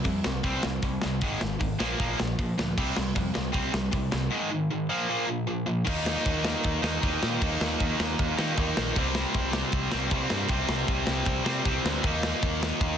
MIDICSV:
0, 0, Header, 1, 4, 480
1, 0, Start_track
1, 0, Tempo, 386598
1, 1509, Time_signature, 4, 2, 24, 8
1, 16112, End_track
2, 0, Start_track
2, 0, Title_t, "Distorted electric guitar"
2, 0, Program_c, 0, 30
2, 50, Note_on_c, 0, 48, 84
2, 55, Note_on_c, 0, 55, 77
2, 273, Note_off_c, 0, 48, 0
2, 276, Note_off_c, 0, 55, 0
2, 299, Note_on_c, 0, 55, 72
2, 305, Note_on_c, 0, 48, 66
2, 518, Note_off_c, 0, 55, 0
2, 521, Note_off_c, 0, 48, 0
2, 537, Note_on_c, 0, 48, 86
2, 557, Note_on_c, 0, 60, 107
2, 561, Note_on_c, 0, 55, 90
2, 768, Note_off_c, 0, 48, 0
2, 771, Note_off_c, 0, 55, 0
2, 777, Note_off_c, 0, 60, 0
2, 783, Note_on_c, 0, 48, 68
2, 786, Note_on_c, 0, 55, 79
2, 1001, Note_off_c, 0, 48, 0
2, 1003, Note_off_c, 0, 55, 0
2, 1031, Note_on_c, 0, 48, 74
2, 1038, Note_on_c, 0, 55, 87
2, 1246, Note_off_c, 0, 48, 0
2, 1249, Note_off_c, 0, 55, 0
2, 1282, Note_on_c, 0, 48, 68
2, 1284, Note_on_c, 0, 55, 73
2, 1492, Note_off_c, 0, 48, 0
2, 1492, Note_off_c, 0, 55, 0
2, 1514, Note_on_c, 0, 44, 87
2, 1519, Note_on_c, 0, 51, 101
2, 1531, Note_on_c, 0, 56, 93
2, 1726, Note_off_c, 0, 44, 0
2, 1727, Note_off_c, 0, 51, 0
2, 1740, Note_on_c, 0, 44, 69
2, 1742, Note_on_c, 0, 51, 78
2, 1747, Note_off_c, 0, 56, 0
2, 1962, Note_off_c, 0, 44, 0
2, 1963, Note_off_c, 0, 51, 0
2, 1981, Note_on_c, 0, 51, 81
2, 1985, Note_on_c, 0, 44, 75
2, 2203, Note_off_c, 0, 51, 0
2, 2205, Note_off_c, 0, 44, 0
2, 2221, Note_on_c, 0, 46, 92
2, 2228, Note_on_c, 0, 53, 100
2, 2234, Note_on_c, 0, 58, 94
2, 2453, Note_off_c, 0, 46, 0
2, 2456, Note_off_c, 0, 53, 0
2, 2459, Note_off_c, 0, 58, 0
2, 2471, Note_on_c, 0, 46, 84
2, 2485, Note_on_c, 0, 53, 102
2, 2487, Note_on_c, 0, 58, 97
2, 2698, Note_off_c, 0, 46, 0
2, 2705, Note_off_c, 0, 53, 0
2, 2706, Note_off_c, 0, 58, 0
2, 2723, Note_on_c, 0, 53, 71
2, 2724, Note_on_c, 0, 46, 69
2, 2935, Note_off_c, 0, 53, 0
2, 2936, Note_off_c, 0, 46, 0
2, 2963, Note_on_c, 0, 46, 71
2, 2969, Note_on_c, 0, 53, 99
2, 3176, Note_off_c, 0, 46, 0
2, 3179, Note_off_c, 0, 53, 0
2, 3201, Note_on_c, 0, 46, 74
2, 3206, Note_on_c, 0, 53, 81
2, 3415, Note_off_c, 0, 46, 0
2, 3418, Note_off_c, 0, 53, 0
2, 3445, Note_on_c, 0, 48, 97
2, 3450, Note_on_c, 0, 55, 98
2, 3455, Note_on_c, 0, 60, 84
2, 3668, Note_off_c, 0, 48, 0
2, 3670, Note_off_c, 0, 55, 0
2, 3673, Note_off_c, 0, 60, 0
2, 3694, Note_on_c, 0, 48, 70
2, 3696, Note_on_c, 0, 55, 81
2, 3899, Note_off_c, 0, 48, 0
2, 3900, Note_off_c, 0, 55, 0
2, 3914, Note_on_c, 0, 48, 79
2, 3915, Note_on_c, 0, 55, 85
2, 4131, Note_off_c, 0, 48, 0
2, 4134, Note_off_c, 0, 55, 0
2, 4145, Note_on_c, 0, 48, 75
2, 4149, Note_on_c, 0, 55, 71
2, 4356, Note_off_c, 0, 48, 0
2, 4367, Note_off_c, 0, 55, 0
2, 4371, Note_on_c, 0, 48, 92
2, 4382, Note_on_c, 0, 55, 91
2, 4386, Note_on_c, 0, 60, 104
2, 4613, Note_off_c, 0, 48, 0
2, 4618, Note_off_c, 0, 55, 0
2, 4620, Note_off_c, 0, 60, 0
2, 4625, Note_on_c, 0, 48, 64
2, 4635, Note_on_c, 0, 55, 73
2, 4845, Note_off_c, 0, 48, 0
2, 4849, Note_off_c, 0, 55, 0
2, 4860, Note_on_c, 0, 48, 82
2, 4864, Note_on_c, 0, 55, 80
2, 5089, Note_off_c, 0, 48, 0
2, 5090, Note_off_c, 0, 55, 0
2, 5108, Note_on_c, 0, 48, 77
2, 5118, Note_on_c, 0, 55, 75
2, 5333, Note_off_c, 0, 48, 0
2, 5338, Note_off_c, 0, 55, 0
2, 5339, Note_on_c, 0, 44, 88
2, 5351, Note_on_c, 0, 51, 101
2, 5361, Note_on_c, 0, 56, 99
2, 5579, Note_off_c, 0, 44, 0
2, 5585, Note_off_c, 0, 51, 0
2, 5590, Note_off_c, 0, 56, 0
2, 5594, Note_on_c, 0, 44, 70
2, 5597, Note_on_c, 0, 51, 86
2, 5817, Note_off_c, 0, 44, 0
2, 5819, Note_off_c, 0, 51, 0
2, 5841, Note_on_c, 0, 44, 77
2, 5842, Note_on_c, 0, 51, 83
2, 6061, Note_off_c, 0, 44, 0
2, 6061, Note_off_c, 0, 51, 0
2, 6077, Note_on_c, 0, 53, 92
2, 6079, Note_on_c, 0, 46, 83
2, 6094, Note_on_c, 0, 58, 82
2, 6302, Note_off_c, 0, 46, 0
2, 6309, Note_off_c, 0, 53, 0
2, 6317, Note_off_c, 0, 58, 0
2, 6317, Note_on_c, 0, 46, 84
2, 6329, Note_on_c, 0, 53, 96
2, 6336, Note_on_c, 0, 58, 93
2, 6527, Note_off_c, 0, 46, 0
2, 6531, Note_off_c, 0, 53, 0
2, 6542, Note_on_c, 0, 46, 68
2, 6545, Note_on_c, 0, 53, 72
2, 6559, Note_off_c, 0, 58, 0
2, 6772, Note_off_c, 0, 46, 0
2, 6774, Note_off_c, 0, 53, 0
2, 6793, Note_on_c, 0, 46, 77
2, 6796, Note_on_c, 0, 53, 82
2, 7013, Note_off_c, 0, 46, 0
2, 7019, Note_off_c, 0, 53, 0
2, 7028, Note_on_c, 0, 46, 72
2, 7033, Note_on_c, 0, 53, 78
2, 7252, Note_off_c, 0, 46, 0
2, 7257, Note_on_c, 0, 51, 80
2, 7258, Note_off_c, 0, 53, 0
2, 7284, Note_on_c, 0, 58, 93
2, 7312, Note_on_c, 0, 63, 109
2, 8460, Note_off_c, 0, 51, 0
2, 8465, Note_off_c, 0, 63, 0
2, 8470, Note_on_c, 0, 63, 88
2, 8474, Note_off_c, 0, 58, 0
2, 8488, Note_on_c, 0, 58, 80
2, 8513, Note_on_c, 0, 51, 61
2, 8688, Note_off_c, 0, 51, 0
2, 8703, Note_on_c, 0, 51, 91
2, 8715, Note_off_c, 0, 58, 0
2, 8730, Note_on_c, 0, 58, 86
2, 8751, Note_off_c, 0, 63, 0
2, 8756, Note_on_c, 0, 63, 94
2, 9168, Note_off_c, 0, 51, 0
2, 9183, Note_on_c, 0, 51, 103
2, 9196, Note_off_c, 0, 58, 0
2, 9219, Note_on_c, 0, 58, 94
2, 9230, Note_off_c, 0, 63, 0
2, 9235, Note_on_c, 0, 63, 98
2, 10380, Note_off_c, 0, 51, 0
2, 10396, Note_off_c, 0, 63, 0
2, 10398, Note_off_c, 0, 58, 0
2, 10401, Note_on_c, 0, 63, 85
2, 10424, Note_on_c, 0, 58, 84
2, 10442, Note_on_c, 0, 51, 81
2, 10616, Note_off_c, 0, 51, 0
2, 10631, Note_on_c, 0, 51, 87
2, 10641, Note_off_c, 0, 58, 0
2, 10663, Note_on_c, 0, 58, 95
2, 10673, Note_off_c, 0, 63, 0
2, 10678, Note_on_c, 0, 63, 98
2, 11104, Note_off_c, 0, 51, 0
2, 11120, Note_off_c, 0, 58, 0
2, 11120, Note_on_c, 0, 48, 91
2, 11140, Note_on_c, 0, 55, 105
2, 11159, Note_off_c, 0, 63, 0
2, 11164, Note_on_c, 0, 60, 120
2, 12300, Note_off_c, 0, 60, 0
2, 12304, Note_off_c, 0, 48, 0
2, 12315, Note_on_c, 0, 60, 88
2, 12342, Note_off_c, 0, 55, 0
2, 12347, Note_on_c, 0, 55, 87
2, 12371, Note_on_c, 0, 48, 85
2, 12532, Note_off_c, 0, 48, 0
2, 12543, Note_off_c, 0, 60, 0
2, 12547, Note_on_c, 0, 48, 85
2, 12573, Note_off_c, 0, 55, 0
2, 12578, Note_on_c, 0, 55, 87
2, 12598, Note_on_c, 0, 60, 88
2, 13017, Note_off_c, 0, 48, 0
2, 13032, Note_on_c, 0, 48, 90
2, 13043, Note_off_c, 0, 60, 0
2, 13051, Note_off_c, 0, 55, 0
2, 13056, Note_on_c, 0, 55, 92
2, 13077, Note_on_c, 0, 60, 99
2, 14194, Note_off_c, 0, 60, 0
2, 14208, Note_on_c, 0, 60, 83
2, 14215, Note_off_c, 0, 48, 0
2, 14225, Note_off_c, 0, 55, 0
2, 14230, Note_on_c, 0, 55, 90
2, 14263, Note_on_c, 0, 48, 72
2, 14440, Note_off_c, 0, 48, 0
2, 14445, Note_off_c, 0, 60, 0
2, 14455, Note_on_c, 0, 48, 79
2, 14472, Note_off_c, 0, 55, 0
2, 14477, Note_on_c, 0, 55, 77
2, 14507, Note_on_c, 0, 60, 90
2, 14926, Note_off_c, 0, 48, 0
2, 14933, Note_on_c, 0, 51, 92
2, 14952, Note_off_c, 0, 60, 0
2, 14962, Note_off_c, 0, 55, 0
2, 14967, Note_on_c, 0, 58, 91
2, 14983, Note_on_c, 0, 63, 112
2, 16112, Note_off_c, 0, 51, 0
2, 16112, Note_off_c, 0, 58, 0
2, 16112, Note_off_c, 0, 63, 0
2, 16112, End_track
3, 0, Start_track
3, 0, Title_t, "Picked electric bass"
3, 0, Program_c, 1, 34
3, 67, Note_on_c, 1, 41, 82
3, 237, Note_off_c, 1, 41, 0
3, 318, Note_on_c, 1, 36, 95
3, 485, Note_off_c, 1, 36, 0
3, 551, Note_on_c, 1, 36, 96
3, 720, Note_off_c, 1, 36, 0
3, 805, Note_on_c, 1, 36, 82
3, 969, Note_off_c, 1, 36, 0
3, 1025, Note_on_c, 1, 36, 91
3, 1197, Note_off_c, 1, 36, 0
3, 1301, Note_on_c, 1, 36, 80
3, 1515, Note_on_c, 1, 32, 89
3, 1534, Note_off_c, 1, 36, 0
3, 1684, Note_off_c, 1, 32, 0
3, 1771, Note_on_c, 1, 32, 85
3, 1935, Note_off_c, 1, 32, 0
3, 1998, Note_on_c, 1, 32, 86
3, 2167, Note_off_c, 1, 32, 0
3, 2243, Note_on_c, 1, 34, 93
3, 2410, Note_off_c, 1, 34, 0
3, 2478, Note_on_c, 1, 34, 90
3, 2648, Note_off_c, 1, 34, 0
3, 2741, Note_on_c, 1, 34, 89
3, 2902, Note_off_c, 1, 34, 0
3, 2962, Note_on_c, 1, 46, 83
3, 3131, Note_off_c, 1, 46, 0
3, 3222, Note_on_c, 1, 38, 90
3, 3384, Note_off_c, 1, 38, 0
3, 3450, Note_on_c, 1, 36, 90
3, 3617, Note_off_c, 1, 36, 0
3, 3697, Note_on_c, 1, 36, 92
3, 3862, Note_off_c, 1, 36, 0
3, 3926, Note_on_c, 1, 41, 84
3, 4095, Note_off_c, 1, 41, 0
3, 4177, Note_on_c, 1, 36, 89
3, 4343, Note_off_c, 1, 36, 0
3, 4403, Note_on_c, 1, 36, 94
3, 4574, Note_off_c, 1, 36, 0
3, 4646, Note_on_c, 1, 36, 92
3, 4816, Note_off_c, 1, 36, 0
3, 4882, Note_on_c, 1, 36, 93
3, 5054, Note_off_c, 1, 36, 0
3, 5132, Note_on_c, 1, 36, 96
3, 5301, Note_off_c, 1, 36, 0
3, 7291, Note_on_c, 1, 39, 91
3, 7636, Note_off_c, 1, 39, 0
3, 7771, Note_on_c, 1, 39, 89
3, 8117, Note_off_c, 1, 39, 0
3, 8255, Note_on_c, 1, 39, 103
3, 8426, Note_off_c, 1, 39, 0
3, 8479, Note_on_c, 1, 39, 100
3, 8656, Note_off_c, 1, 39, 0
3, 8730, Note_on_c, 1, 39, 95
3, 8903, Note_off_c, 1, 39, 0
3, 8978, Note_on_c, 1, 46, 100
3, 9148, Note_off_c, 1, 46, 0
3, 9205, Note_on_c, 1, 39, 92
3, 9379, Note_off_c, 1, 39, 0
3, 9447, Note_on_c, 1, 39, 95
3, 9621, Note_off_c, 1, 39, 0
3, 9692, Note_on_c, 1, 39, 99
3, 9864, Note_off_c, 1, 39, 0
3, 9933, Note_on_c, 1, 39, 100
3, 10104, Note_off_c, 1, 39, 0
3, 10173, Note_on_c, 1, 39, 113
3, 10344, Note_off_c, 1, 39, 0
3, 10413, Note_on_c, 1, 51, 101
3, 10584, Note_off_c, 1, 51, 0
3, 10649, Note_on_c, 1, 39, 110
3, 10821, Note_off_c, 1, 39, 0
3, 10900, Note_on_c, 1, 34, 90
3, 11067, Note_off_c, 1, 34, 0
3, 11130, Note_on_c, 1, 36, 99
3, 11473, Note_off_c, 1, 36, 0
3, 11606, Note_on_c, 1, 36, 94
3, 11950, Note_off_c, 1, 36, 0
3, 12077, Note_on_c, 1, 36, 105
3, 12251, Note_off_c, 1, 36, 0
3, 12345, Note_on_c, 1, 36, 99
3, 12509, Note_off_c, 1, 36, 0
3, 12560, Note_on_c, 1, 36, 103
3, 12732, Note_off_c, 1, 36, 0
3, 12801, Note_on_c, 1, 43, 98
3, 12972, Note_off_c, 1, 43, 0
3, 13028, Note_on_c, 1, 36, 88
3, 13204, Note_off_c, 1, 36, 0
3, 13268, Note_on_c, 1, 36, 93
3, 13443, Note_off_c, 1, 36, 0
3, 13510, Note_on_c, 1, 36, 83
3, 13684, Note_off_c, 1, 36, 0
3, 13749, Note_on_c, 1, 36, 93
3, 13923, Note_off_c, 1, 36, 0
3, 13986, Note_on_c, 1, 36, 106
3, 14161, Note_off_c, 1, 36, 0
3, 14226, Note_on_c, 1, 48, 98
3, 14400, Note_off_c, 1, 48, 0
3, 14473, Note_on_c, 1, 36, 98
3, 14644, Note_off_c, 1, 36, 0
3, 14710, Note_on_c, 1, 38, 93
3, 14881, Note_off_c, 1, 38, 0
3, 14958, Note_on_c, 1, 39, 90
3, 15298, Note_off_c, 1, 39, 0
3, 15436, Note_on_c, 1, 39, 86
3, 15776, Note_off_c, 1, 39, 0
3, 15900, Note_on_c, 1, 39, 104
3, 16072, Note_off_c, 1, 39, 0
3, 16112, End_track
4, 0, Start_track
4, 0, Title_t, "Drums"
4, 62, Note_on_c, 9, 36, 99
4, 67, Note_on_c, 9, 46, 57
4, 186, Note_off_c, 9, 36, 0
4, 191, Note_off_c, 9, 46, 0
4, 302, Note_on_c, 9, 38, 123
4, 427, Note_off_c, 9, 38, 0
4, 540, Note_on_c, 9, 46, 50
4, 545, Note_on_c, 9, 36, 93
4, 664, Note_off_c, 9, 46, 0
4, 669, Note_off_c, 9, 36, 0
4, 782, Note_on_c, 9, 38, 109
4, 906, Note_off_c, 9, 38, 0
4, 1023, Note_on_c, 9, 46, 62
4, 1027, Note_on_c, 9, 36, 107
4, 1147, Note_off_c, 9, 46, 0
4, 1151, Note_off_c, 9, 36, 0
4, 1260, Note_on_c, 9, 38, 92
4, 1385, Note_off_c, 9, 38, 0
4, 1505, Note_on_c, 9, 46, 70
4, 1511, Note_on_c, 9, 36, 121
4, 1630, Note_off_c, 9, 46, 0
4, 1635, Note_off_c, 9, 36, 0
4, 1751, Note_on_c, 9, 38, 105
4, 1875, Note_off_c, 9, 38, 0
4, 1995, Note_on_c, 9, 36, 105
4, 1999, Note_on_c, 9, 46, 52
4, 2120, Note_off_c, 9, 36, 0
4, 2123, Note_off_c, 9, 46, 0
4, 2238, Note_on_c, 9, 38, 114
4, 2362, Note_off_c, 9, 38, 0
4, 2478, Note_on_c, 9, 46, 52
4, 2481, Note_on_c, 9, 36, 95
4, 2602, Note_off_c, 9, 46, 0
4, 2605, Note_off_c, 9, 36, 0
4, 2727, Note_on_c, 9, 38, 107
4, 2851, Note_off_c, 9, 38, 0
4, 2965, Note_on_c, 9, 36, 117
4, 2973, Note_on_c, 9, 46, 61
4, 3089, Note_off_c, 9, 36, 0
4, 3097, Note_off_c, 9, 46, 0
4, 3217, Note_on_c, 9, 38, 106
4, 3341, Note_off_c, 9, 38, 0
4, 3447, Note_on_c, 9, 36, 123
4, 3449, Note_on_c, 9, 49, 99
4, 3571, Note_off_c, 9, 36, 0
4, 3574, Note_off_c, 9, 49, 0
4, 3681, Note_on_c, 9, 38, 105
4, 3805, Note_off_c, 9, 38, 0
4, 3922, Note_on_c, 9, 36, 106
4, 3926, Note_on_c, 9, 46, 56
4, 4046, Note_off_c, 9, 36, 0
4, 4050, Note_off_c, 9, 46, 0
4, 4160, Note_on_c, 9, 38, 104
4, 4284, Note_off_c, 9, 38, 0
4, 4395, Note_on_c, 9, 46, 49
4, 4399, Note_on_c, 9, 36, 100
4, 4519, Note_off_c, 9, 46, 0
4, 4523, Note_off_c, 9, 36, 0
4, 4642, Note_on_c, 9, 38, 103
4, 4766, Note_off_c, 9, 38, 0
4, 4871, Note_on_c, 9, 46, 64
4, 4878, Note_on_c, 9, 36, 118
4, 4995, Note_off_c, 9, 46, 0
4, 5003, Note_off_c, 9, 36, 0
4, 5116, Note_on_c, 9, 38, 106
4, 5240, Note_off_c, 9, 38, 0
4, 7288, Note_on_c, 9, 36, 127
4, 7288, Note_on_c, 9, 49, 73
4, 7288, Note_on_c, 9, 57, 127
4, 7412, Note_off_c, 9, 36, 0
4, 7413, Note_off_c, 9, 49, 0
4, 7413, Note_off_c, 9, 57, 0
4, 7528, Note_on_c, 9, 38, 124
4, 7652, Note_off_c, 9, 38, 0
4, 7771, Note_on_c, 9, 36, 120
4, 7774, Note_on_c, 9, 49, 71
4, 7895, Note_off_c, 9, 36, 0
4, 7898, Note_off_c, 9, 49, 0
4, 8002, Note_on_c, 9, 38, 125
4, 8127, Note_off_c, 9, 38, 0
4, 8239, Note_on_c, 9, 49, 61
4, 8250, Note_on_c, 9, 36, 103
4, 8363, Note_off_c, 9, 49, 0
4, 8375, Note_off_c, 9, 36, 0
4, 8490, Note_on_c, 9, 38, 119
4, 8615, Note_off_c, 9, 38, 0
4, 8727, Note_on_c, 9, 49, 81
4, 8731, Note_on_c, 9, 36, 114
4, 8852, Note_off_c, 9, 49, 0
4, 8855, Note_off_c, 9, 36, 0
4, 8972, Note_on_c, 9, 38, 106
4, 9096, Note_off_c, 9, 38, 0
4, 9210, Note_on_c, 9, 36, 127
4, 9210, Note_on_c, 9, 49, 84
4, 9334, Note_off_c, 9, 36, 0
4, 9334, Note_off_c, 9, 49, 0
4, 9451, Note_on_c, 9, 38, 119
4, 9576, Note_off_c, 9, 38, 0
4, 9687, Note_on_c, 9, 49, 75
4, 9689, Note_on_c, 9, 36, 111
4, 9811, Note_off_c, 9, 49, 0
4, 9813, Note_off_c, 9, 36, 0
4, 9932, Note_on_c, 9, 38, 122
4, 10056, Note_off_c, 9, 38, 0
4, 10168, Note_on_c, 9, 49, 62
4, 10172, Note_on_c, 9, 36, 113
4, 10292, Note_off_c, 9, 49, 0
4, 10296, Note_off_c, 9, 36, 0
4, 10411, Note_on_c, 9, 38, 118
4, 10535, Note_off_c, 9, 38, 0
4, 10644, Note_on_c, 9, 49, 72
4, 10649, Note_on_c, 9, 36, 125
4, 10768, Note_off_c, 9, 49, 0
4, 10773, Note_off_c, 9, 36, 0
4, 10890, Note_on_c, 9, 38, 110
4, 11014, Note_off_c, 9, 38, 0
4, 11123, Note_on_c, 9, 49, 78
4, 11128, Note_on_c, 9, 36, 127
4, 11247, Note_off_c, 9, 49, 0
4, 11252, Note_off_c, 9, 36, 0
4, 11359, Note_on_c, 9, 38, 124
4, 11483, Note_off_c, 9, 38, 0
4, 11599, Note_on_c, 9, 49, 66
4, 11603, Note_on_c, 9, 36, 111
4, 11723, Note_off_c, 9, 49, 0
4, 11728, Note_off_c, 9, 36, 0
4, 11836, Note_on_c, 9, 38, 117
4, 11960, Note_off_c, 9, 38, 0
4, 12069, Note_on_c, 9, 49, 62
4, 12081, Note_on_c, 9, 36, 97
4, 12193, Note_off_c, 9, 49, 0
4, 12205, Note_off_c, 9, 36, 0
4, 12311, Note_on_c, 9, 38, 122
4, 12435, Note_off_c, 9, 38, 0
4, 12550, Note_on_c, 9, 49, 67
4, 12556, Note_on_c, 9, 36, 127
4, 12674, Note_off_c, 9, 49, 0
4, 12680, Note_off_c, 9, 36, 0
4, 12790, Note_on_c, 9, 38, 116
4, 12914, Note_off_c, 9, 38, 0
4, 13016, Note_on_c, 9, 49, 82
4, 13028, Note_on_c, 9, 36, 127
4, 13140, Note_off_c, 9, 49, 0
4, 13153, Note_off_c, 9, 36, 0
4, 13268, Note_on_c, 9, 38, 116
4, 13392, Note_off_c, 9, 38, 0
4, 13508, Note_on_c, 9, 49, 72
4, 13512, Note_on_c, 9, 36, 125
4, 13632, Note_off_c, 9, 49, 0
4, 13636, Note_off_c, 9, 36, 0
4, 13742, Note_on_c, 9, 38, 123
4, 13866, Note_off_c, 9, 38, 0
4, 13969, Note_on_c, 9, 49, 64
4, 13985, Note_on_c, 9, 36, 109
4, 14093, Note_off_c, 9, 49, 0
4, 14109, Note_off_c, 9, 36, 0
4, 14230, Note_on_c, 9, 38, 117
4, 14354, Note_off_c, 9, 38, 0
4, 14470, Note_on_c, 9, 36, 120
4, 14471, Note_on_c, 9, 49, 68
4, 14594, Note_off_c, 9, 36, 0
4, 14595, Note_off_c, 9, 49, 0
4, 14722, Note_on_c, 9, 38, 118
4, 14846, Note_off_c, 9, 38, 0
4, 14944, Note_on_c, 9, 49, 71
4, 14949, Note_on_c, 9, 36, 127
4, 15068, Note_off_c, 9, 49, 0
4, 15074, Note_off_c, 9, 36, 0
4, 15188, Note_on_c, 9, 38, 121
4, 15312, Note_off_c, 9, 38, 0
4, 15430, Note_on_c, 9, 36, 119
4, 15431, Note_on_c, 9, 49, 66
4, 15554, Note_off_c, 9, 36, 0
4, 15556, Note_off_c, 9, 49, 0
4, 15679, Note_on_c, 9, 38, 121
4, 15803, Note_off_c, 9, 38, 0
4, 15903, Note_on_c, 9, 49, 57
4, 15904, Note_on_c, 9, 36, 112
4, 16027, Note_off_c, 9, 49, 0
4, 16029, Note_off_c, 9, 36, 0
4, 16112, End_track
0, 0, End_of_file